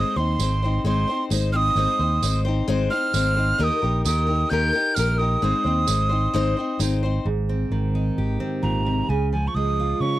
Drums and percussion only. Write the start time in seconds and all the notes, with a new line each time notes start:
0.40 tambourine
1.31 tambourine
2.23 tambourine
3.14 tambourine
4.05 tambourine
4.96 tambourine
5.88 tambourine
6.80 tambourine